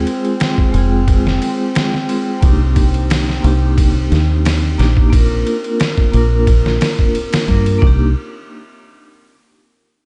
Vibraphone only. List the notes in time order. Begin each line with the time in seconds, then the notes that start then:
Already playing: G#3 C4 F4 G#4
0.72 G#3 C4 F4
0.78 G#4
2.08 G#3 C4 F4 G#4
2.40 A#3 D4
2.44 D#4 G4
3.42 A#3 D4 D#4
3.47 G4
4.78 A#3 D4 D#4 G4
5.10 A#3 D4 F4
5.16 A#4
6.12 A#3 D4 F4
6.17 A#4
7.48 A#3 D4 F4 A#4
7.79 A#3 D4
7.84 D#4 G4